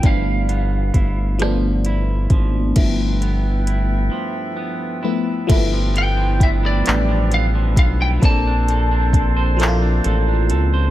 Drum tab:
CC |------|x-----|x-----|------|
HH |xxxxxx|xxx---|xxxxxx|xxxxxx|
CP |------|------|---x--|---x--|
SD |---r--|------|------|------|
BD |o-o--o|o-----|o-o--o|o-o---|